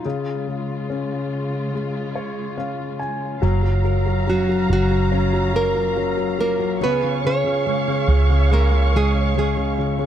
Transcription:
Already playing: nylon-string guitar F4
0.05 grand piano C#3, string section C#3 G#3 F4
0.48 grand piano G#3
0.90 grand piano C#4
1.74 grand piano G#3
2.15 grand piano C#5
2.58 grand piano C#4 F5
2.99 grand piano G#5
3.42 fingered electric bass F#1, grand piano F#3, steel-string acoustic guitar F#3 A#4, string section F#3 F5 A#5
3.63 grand piano F#3, steel-string acoustic guitar F4
3.84 grand piano F#3, steel-string acoustic guitar A#4
4.06 grand piano F#3
4.27 grand piano F#3, nylon-string guitar F#3 F#4, steel-string acoustic guitar C#4
4.48 grand piano F#3, steel-string acoustic guitar A#4
4.69 fingered electric bass F#1, grand piano F#3, nylon-string guitar F#3 F#4
4.91 grand piano F#3, steel-string acoustic guitar C#4
5.12 steel-string acoustic guitar F#3 A#4, grand piano C#4
5.33 grand piano F#3, steel-string acoustic guitar F4
5.54 grand piano F#3, nylon-string guitar A#3 A#4, steel-string acoustic guitar A#4
5.74 grand piano F#3, steel-string acoustic guitar F4
5.96 grand piano F#3, steel-string acoustic guitar C#4
6.17 grand piano F#3, steel-string acoustic guitar A#4
6.39 nylon-string guitar A#3 A#4, steel-string acoustic guitar F4
6.59 grand piano F#3, steel-string acoustic guitar C#4
6.80 fingered electric bass C#2, grand piano C#3, steel-string acoustic guitar C#3 G#4, nylon-string guitar B3 B4, string section C#5 F5 C#6
7.03 grand piano C#3, steel-string acoustic guitar F4
7.24 grand piano C#3, nylon-string guitar C#4 C#5, steel-string acoustic guitar G#4
7.44 grand piano C#3, steel-string acoustic guitar F4
7.66 grand piano C#3, steel-string acoustic guitar G#3
7.88 grand piano C#3, steel-string acoustic guitar G#4
8.08 fingered electric bass C#2, grand piano C#3, steel-string acoustic guitar F4
8.30 grand piano C#3
8.51 steel-string acoustic guitar C#3 G#4, grand piano G#3, nylon-string guitar A#3 A#4
8.72 grand piano C#3, steel-string acoustic guitar F4
8.93 grand piano C#3, nylon-string guitar G#3 G#4, steel-string acoustic guitar G#4
9.14 grand piano C#3, steel-string acoustic guitar F4
9.34 grand piano C#3, steel-string acoustic guitar G#3, nylon-string guitar G#3
9.39 nylon-string guitar G#4
9.56 grand piano C#3, steel-string acoustic guitar G#4
9.77 grand piano C#3, steel-string acoustic guitar F4
9.99 grand piano C#3, steel-string acoustic guitar B3

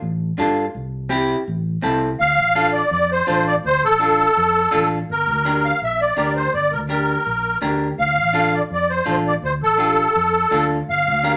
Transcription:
0.02 fingered electric bass A1
0.38 fingered electric bass G2, clean electric guitar D4 F4 A4
0.75 fingered electric bass C2
1.09 clean electric guitar C4 E4 G4
1.48 fingered electric bass A1
1.82 fingered electric bass C2, clean electric guitar C4 E4 A4
2.20 fingered electric bass D2, accordion F5
2.38 fingered electric bass A1
2.55 clean electric guitar D4 F4 A4
2.73 accordion D5
2.91 fingered electric bass F2, accordion D5
3.12 accordion C5
3.27 fingered electric bass A1, clean electric guitar D4 F4 A4, accordion C5
3.48 accordion D5
3.64 fingered electric bass D2, accordion C5
3.83 fingered electric bass A1, accordion A4
4.00 clean electric guitar D4 F4 A4
4.37 fingered electric bass F2
4.71 fingered electric bass A1, clean electric guitar D4 F4 A4
5.10 fingered electric bass G1, accordion A#4
5.27 fingered electric bass D2
5.45 clean electric guitar D4 G4 A#4
5.65 accordion F5
5.82 fingered electric bass A#1, accordion E5
6.01 accordion D5
6.17 fingered electric bass D2, clean electric guitar D4 G4 A#4
6.36 accordion C5
6.54 fingered electric bass G1, accordion D5
6.72 fingered electric bass D2, accordion A#4
6.89 clean electric guitar D4 G4 A#4, accordion A#4
7.26 fingered electric bass A#1
7.62 fingered electric bass D2, clean electric guitar D4 G4 A#4
7.98 fingered electric bass D2, accordion F5
8.16 fingered electric bass A1
8.33 clean electric guitar D4 F4 A4
8.54 accordion D5
8.70 fingered electric bass F2, accordion D5
8.90 accordion C5
9.05 fingered electric bass A1, clean electric guitar D4 F4 A4, accordion C5
9.27 accordion D5
9.42 fingered electric bass D2, accordion C5
9.61 fingered electric bass A1, accordion A4
9.78 clean electric guitar D4 F4 G4
10.15 fingered electric bass F2
10.51 fingered electric bass D2, clean electric guitar D4 F4 A4
10.89 fingered electric bass G1, accordion F5
11.07 fingered electric bass D2
11.23 clean electric guitar D4 G4 A#4

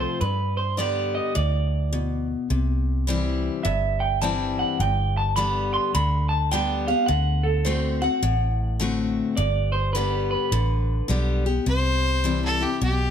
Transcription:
Already playing: steel-string acoustic guitar C3 F3 A3 C4 F4
0.00 clean electric guitar C5
0.21 steel-string acoustic guitar G2, fingered electric bass G2, clean electric guitar B4
0.57 clean electric guitar C5
0.77 steel-string acoustic guitar D3 G3 B3 G4, clean electric guitar D5
1.15 clean electric guitar D#5
1.35 fingered electric bass D2, steel-string acoustic guitar A2, clean electric guitar D5
1.93 steel-string acoustic guitar B2
2.50 fingered electric bass C2, steel-string acoustic guitar C3
3.07 steel-string acoustic guitar E3 G3 C4 E4
3.63 fingered electric bass G1, steel-string acoustic guitar G2, clean electric guitar E5
4.00 clean electric guitar G5
4.22 steel-string acoustic guitar E3 G3 C4 E4, clean electric guitar A5
4.59 clean electric guitar F#5
4.79 fingered electric bass G1, steel-string acoustic guitar G2, clean electric guitar G5
5.17 clean electric guitar A5
5.36 steel-string acoustic guitar D3 G3 B3 G4, clean electric guitar B5
5.74 clean electric guitar C6
5.95 fingered electric bass D2, steel-string acoustic guitar D3, clean electric guitar B5
6.29 clean electric guitar A5
6.51 steel-string acoustic guitar D3 G3 B3 G4, clean electric guitar G5
6.88 steel-string acoustic guitar B3 G4, clean electric guitar F5
7.06 fingered electric bass D2, steel-string acoustic guitar D3, clean electric guitar F#5
7.43 clean electric guitar A4
7.65 steel-string acoustic guitar D3 A3 C4 F#4, clean electric guitar C5
8.02 steel-string acoustic guitar C4 F#4, clean electric guitar F#5
8.22 fingered electric bass A1, steel-string acoustic guitar A2
8.80 steel-string acoustic guitar D3 A3 C4 F#4
9.37 fingered electric bass G1, steel-string acoustic guitar G2, clean electric guitar D5
9.72 clean electric guitar C5
9.93 steel-string acoustic guitar D3 G3 B3 G4, clean electric guitar B4
10.31 clean electric guitar B4
10.52 fingered electric bass A1, steel-string acoustic guitar D3
11.08 fingered electric bass B1, steel-string acoustic guitar D3 G3 B3 G4
11.46 steel-string acoustic guitar B3 G4
11.66 fingered electric bass C2, steel-string acoustic guitar C3, fiddle C5
12.24 steel-string acoustic guitar E3 G3 C4 E4
12.45 fiddle A4
12.61 steel-string acoustic guitar C4 E4, fiddle G4
12.81 fingered electric bass B1, steel-string acoustic guitar B2, fiddle G4

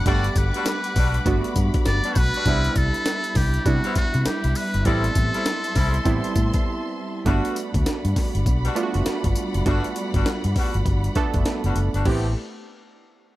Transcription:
Already playing: string section G3 F#5 B5 D6, synth keys A3 B3 D4 A4
0.06 fingered electric bass G1, horn section G3 B3 D4 F#4, synth keys A3 B3 D4 G4, muted trumpet D5, kick, closed hi-hat
0.24 closed hi-hat
0.36 fingered electric bass G1, muted trumpet B4, kick, closed hi-hat, tambourine
0.54 horn section G3 B3 D4 F#4, closed hi-hat
0.66 snare, closed hi-hat, tambourine
0.84 closed hi-hat
0.96 fingered electric bass B1, horn section G3 B3 D4 F#4, kick, open hi-hat, tambourine
1.14 closed hi-hat
1.26 fingered electric bass G1, synth keys A3 B3 D4 F#4, kick, closed hi-hat, tambourine
1.44 closed hi-hat
1.56 fingered electric bass G2, kick, closed hi-hat, tambourine
1.74 kick, closed hi-hat
1.85 fingered electric bass G1, muted trumpet D5, snare, closed hi-hat, tambourine
2.04 horn section G3 B3 D4 F#4, closed hi-hat
2.15 fingered electric bass B1, muted trumpet B4, kick, open hi-hat, tambourine
2.34 horn section G3 B3 D4 F#4, closed hi-hat
2.46 fingered electric bass C2, string section G3 E5, horn section G3 B3 C4 E4, synth keys G3 B3 D4 E4, kick, closed hi-hat
2.64 closed hi-hat
2.76 fingered electric bass C2, muted trumpet A4, kick, closed hi-hat, tambourine
2.94 closed hi-hat
3.05 snare, closed hi-hat, tambourine
3.24 closed hi-hat
3.35 fingered electric bass C2, muted trumpet G4, kick, snare, open hi-hat, tambourine
3.54 closed hi-hat
3.65 fingered electric bass C3, synth keys G3 B3 D4 E4, muted trumpet F#4, kick, closed hi-hat, tambourine
3.84 horn section G3 B3 C4 E4, closed hi-hat
3.95 muted trumpet F#4, muted fingered electric bass stroke, kick, closed hi-hat, tambourine
4.14 fingered electric bass C3, closed hi-hat
4.25 muted trumpet G4, muted fingered electric bass stroke, snare, closed hi-hat, tambourine
4.44 fingered electric bass C2, closed hi-hat
4.55 muted trumpet B4, open hi-hat, tambourine
4.74 fingered electric bass G1, closed hi-hat
4.85 fingered electric bass A1, synth keys G3 B3 C4 E4, horn section G3 A3 C4 E4, muted trumpet A4, string section A5 C6, kick, closed hi-hat
5.04 closed hi-hat
5.15 fingered electric bass A1, kick, closed hi-hat, tambourine
5.34 horn section G3 A3 C4 E4, closed hi-hat
5.46 snare, closed hi-hat, tambourine
5.64 closed hi-hat
5.75 fingered electric bass C2, horn section G3 A3 C4 E4, kick, snare, open hi-hat, tambourine
5.94 closed hi-hat
6.05 fingered electric bass A1, synth keys G3 B3 C4 E4, kick, closed hi-hat, tambourine
6.24 closed hi-hat
6.36 fingered electric bass A2, kick, closed hi-hat, tambourine
6.54 kick, closed hi-hat
7.25 fingered electric bass G1, horn section G3 B3 D4 F#4, string section G3 D5 F#5 B5, synth keys A3 B3 D4 F#4, kick, closed hi-hat
7.45 closed hi-hat
7.56 closed hi-hat, tambourine
7.74 fingered electric bass D2, kick, closed hi-hat
7.86 muted fingered electric bass stroke, snare, closed hi-hat, tambourine
8.05 fingered electric bass G2, closed hi-hat
8.16 kick, snare, open hi-hat, tambourine
8.35 fingered electric bass G1, closed hi-hat
8.46 fingered electric bass B1, kick, closed hi-hat, tambourine
8.64 horn section G3 B3 D4 F#4, closed hi-hat
8.75 synth keys A3 B3 D4 F4, closed hi-hat, tambourine
8.83 synth keys F#4
8.94 fingered electric bass F#1, closed hi-hat
9.06 muted fingered electric bass stroke, snare, closed hi-hat, tambourine
9.24 fingered electric bass G1, kick, closed hi-hat
9.36 closed hi-hat, tambourine
9.54 fingered electric bass F#1, closed hi-hat
9.66 fingered electric bass G1, horn section G3 B3 D4 F#4, synth keys A3 B3 D4 F#4, kick, closed hi-hat
9.84 closed hi-hat
9.96 closed hi-hat
10.14 fingered electric bass G1, horn section G3 B3 D4 F#4, kick, closed hi-hat
10.26 muted fingered electric bass stroke, snare, closed hi-hat
10.44 fingered electric bass G2, closed hi-hat
10.56 horn section G3 B3 D4 F#4, kick, open hi-hat
10.74 fingered electric bass G1, closed hi-hat
10.86 fingered electric bass G1, kick, closed hi-hat
11.04 closed hi-hat
11.15 synth keys A3 B3 D4 A4, kick, closed hi-hat
11.34 fingered electric bass F#1, kick, closed hi-hat
11.46 snare, closed hi-hat
11.64 fingered electric bass F#1, horn section G3 B3 D4 F#4, closed hi-hat
11.76 fingered electric bass F#1, closed hi-hat
11.94 fingered electric bass G1, horn section G3 B3 D4 F#4, closed hi-hat
12.05 fingered electric bass A1, horn section A3 B3 C4 G4, string section A3 G4 A4 B4, synth keys B3 C4 E4 G4, kick, crash

